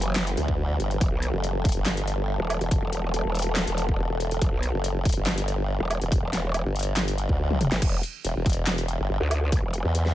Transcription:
0.00 0.36 F#1 loud
0.00 7.78 E3 medium
0.00 7.78 G3 medium
0.00 7.78 B3 medium
0.00 7.78 G4 medium
0.00 0.99 B4 medium
0.00 closed hi-hat medium
0.16 snare loud
0.16 clap medium
0.16 closed hi-hat medium
0.27 closed hi-hat medium
0.37 0.78 D2 medium
0.37 closed hi-hat medium
0.48 kick medium
0.80 0.99 G1 loud
0.80 closed hi-hat soft
0.91 closed hi-hat soft
1.01 1.10 E1 loud
1.01 7.80 A4 medium
1.01 kick loud
1.01 closed hi-hat medium
1.12 1.32 B1 loud
1.22 closed hi-hat medium
1.33 1.74 F#1 loud
1.44 closed hi-hat medium
1.65 kick loud
1.65 closed hi-hat soft
1.69 closed hi-hat medium
1.72 2.38 G1 loud
1.72 closed hi-hat medium
1.86 snare loud
1.86 clap medium
1.86 closed hi-hat medium
1.97 closed hi-hat medium
2.07 closed hi-hat medium
2.40 2.59 E1 loud
2.50 closed hi-hat soft
2.50 low woodblock medium
2.61 2.81 E1 loud
2.61 closed hi-hat soft
2.71 kick loud
2.71 closed hi-hat medium
2.82 3.23 E1 loud
2.93 closed hi-hat medium
3.14 closed hi-hat medium
3.25 3.66 E1 medium
3.35 closed hi-hat medium
3.39 closed hi-hat medium
3.42 closed hi-hat medium
3.56 snare loud
3.56 clap medium
3.56 closed hi-hat medium
3.67 3.97 E1 loud
3.67 closed hi-hat medium
3.78 closed hi-hat medium
3.89 kick medium
3.99 4.40 E1 loud
4.20 closed hi-hat medium
4.31 closed hi-hat soft
4.42 4.51 E1 loud
4.42 kick loud
4.42 closed hi-hat medium
4.53 4.72 B1 loud
4.63 closed hi-hat medium
4.74 5.15 F#1 loud
4.84 closed hi-hat medium
5.05 kick loud
5.05 closed hi-hat medium
5.09 closed hi-hat medium
5.12 5.78 G1 loud
5.12 closed hi-hat medium
5.27 snare loud
5.27 clap medium
5.27 closed hi-hat medium
5.38 closed hi-hat medium
5.48 closed hi-hat medium
5.80 6.00 E1 loud
5.91 closed hi-hat medium
5.91 low woodblock medium
6.01 6.21 E1 loud
6.01 closed hi-hat soft
6.12 kick loud
6.12 closed hi-hat medium
6.23 6.64 E1 loud
6.33 snare medium
6.33 closed hi-hat medium
6.54 closed hi-hat medium
6.54 low woodblock medium
6.65 7.27 G1 loud
6.76 closed hi-hat medium
6.79 closed hi-hat medium
6.83 closed hi-hat medium
6.97 snare loud
6.97 clap medium
6.97 closed hi-hat medium
7.08 closed hi-hat medium
7.18 closed hi-hat medium
7.29 7.70 D2 loud
7.29 kick medium
7.50 high tom medium
7.61 closed hi-hat medium
7.61 mid tom medium
7.72 7.80 G1 loud
7.72 snare medium
7.72 closed hi-hat soft
7.82 8.02 E1 loud
7.82 kick loud
7.82 closed hi-hat medium
7.82 crash loud
8.03 closed hi-hat medium
8.25 8.34 E1 loud
8.25 closed hi-hat medium
8.36 8.98 E1 medium
8.46 kick loud
8.46 closed hi-hat medium
8.50 closed hi-hat medium
8.53 closed hi-hat medium
8.67 snare loud
8.67 clap medium
8.67 closed hi-hat medium
8.78 closed hi-hat medium
8.88 closed hi-hat medium
8.99 9.08 G1 loud
9.10 9.19 G1 loud
9.21 9.61 D2 loud
9.31 closed hi-hat medium
9.31 low woodblock medium
9.52 kick loud
9.52 closed hi-hat medium
9.63 9.83 E1 loud
9.74 closed hi-hat medium
9.84 10.14 E2 loud
9.95 closed hi-hat medium
10.06 snare soft

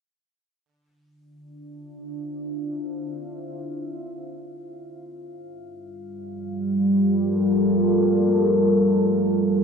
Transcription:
0.33 6.31 D4 medium
0.70 6.60 F5 medium
1.08 7.28 C5 medium
1.08 6.80 E5 medium
5.28 9.64 G3 medium
5.95 9.64 F4 medium
6.20 9.64 A4 medium
6.63 9.64 A#4 medium

